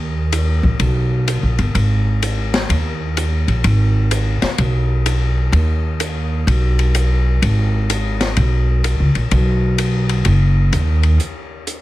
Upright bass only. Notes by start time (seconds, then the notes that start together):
Already playing: D#2
0.63 A#1
0.79 B1
1.43 A#1
1.59 G1
1.75 G#1
2.69 D#2
3.48 A#1
3.64 G#1
4.42 muted upright bass stroke
4.58 B1
5.52 D#2
6.47 B1
7.42 G#1
8.37 B1
9.00 C#2
9.15 A#1
9.31 B1
10.26 F#1
10.73 D#2